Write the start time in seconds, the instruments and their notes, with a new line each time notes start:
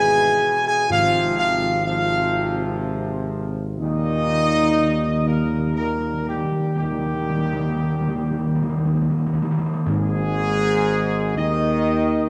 Already playing: tuba G#1, trombone section B2 E3, french horn section G#4, trumpet section G#5
0.65 french horn section G#4, trumpet section G#5
0.88 tuba G#1, timpani G#2, trombone section C3 F3, french horn section F4, trumpet section F5
1.37 french horn section F4, trumpet section F5
1.84 trombone section C3 F3, french horn section F4, trumpet section F5
3.80 tuba D#2, trombone section A#2 D#3, timpani D#3, french horn section D#4, trumpet section D#5
3.89 timpani D#3
3.97 timpani D#3
4.12 timpani D#3
4.19 timpani D#3
4.26 timpani D#3
4.34 timpani D#3
4.63 timpani D#3
4.70 timpani D#3
4.78 timpani D#3
4.84 timpani D#3
4.92 timpani D#3
5.00 timpani D#3
5.07 timpani D#3
5.15 timpani D#3
5.22 timpani D#3
5.26 timpani D#3, french horn section A#3, trumpet section A#4
5.37 timpani D#3
5.44 timpani D#3
5.52 timpani D#3
5.60 timpani D#3
5.67 timpani D#3
5.75 trombone section A#2 D#3, timpani D#3, french horn section A#3, trumpet section A#4
5.91 timpani D#3
5.99 timpani D#3
6.06 timpani D#3
6.14 timpani D#3
6.21 timpani D#3
6.26 timpani D#3, french horn section G3, trumpet section G4
6.36 timpani D#3
6.45 timpani D#3
6.52 timpani D#3
6.60 timpani D#3
6.68 timpani D#3
6.76 tuba D#2, trombone section A#2 D#3, timpani D#3, french horn section G3, trumpet section G4
6.83 timpani D#3
6.91 timpani D#3
6.99 timpani D#3
7.07 timpani D#3
7.15 timpani D#3
7.22 timpani D#3
7.29 timpani D#3
7.38 timpani D#3
7.45 timpani D#3
7.53 timpani D#3
7.60 timpani D#3
7.69 timpani D#3
7.76 timpani D#3
7.84 timpani D#3
7.93 timpani D#3
8.01 timpani D#3
8.08 timpani D#3
8.16 timpani D#3
8.24 timpani D#3
8.31 timpani D#3
8.39 timpani D#3
8.47 timpani D#3
8.55 timpani D#3
8.62 timpani D#3
8.69 timpani D#3
8.78 timpani D#3
8.85 timpani D#3
8.94 timpani D#3
9.02 timpani D#3
9.10 timpani D#3
9.18 timpani D#3
9.26 timpani D#3
9.34 timpani D#3
9.42 timpani D#3
9.51 timpani D#3
9.59 timpani D#3
9.66 timpani D#3
9.74 timpani D#3
9.85 tuba G#1, trombone section G#2, timpani G#2, french horn section G#3, trumpet section G#4
11.37 tuba D#2, trombone section D#3, french horn section D#4, trumpet section D#5